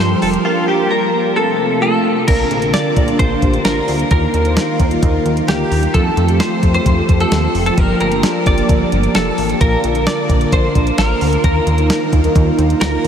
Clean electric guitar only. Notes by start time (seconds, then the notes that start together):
0.00 C5
0.22 A4
0.45 F4
0.68 G4
0.91 A#4
1.36 A4
1.82 A4
2.28 A#4
2.74 D5
3.19 C5
3.65 A#4
4.11 A#4
5.48 G4
5.94 A4
6.40 C5
6.75 C5
7.21 A4
7.66 A4
7.78 A#4
8.01 A#4
8.47 D5
9.15 A4
9.61 A#4
10.07 D5
10.53 C5
10.98 A#4
11.44 A#4
12.81 A#4